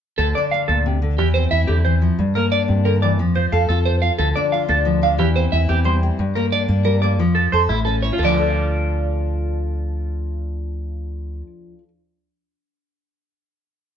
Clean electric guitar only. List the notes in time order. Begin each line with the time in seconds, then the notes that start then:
0.18 A4
0.35 D5
0.51 F5
0.68 A4
1.18 G4
1.34 C5
1.51 E5
1.67 G4
1.85 C5
2.35 A#4
2.52 D5
2.85 A#4
3.02 D5
3.36 C5
3.52 F5
3.69 A4
3.86 C5
4.02 F5
4.19 A4
4.36 D5
4.52 F5
4.69 A4
5.03 F5
5.19 G4
5.36 C5
5.52 E5
5.69 G4
5.85 C5
6.35 A#4
6.52 D5
6.85 A#4
7.02 D5
7.35 A4
7.52 C5
7.69 E4
7.85 A4
8.02 C#5
8.13 F4
8.19 A4
8.25 D5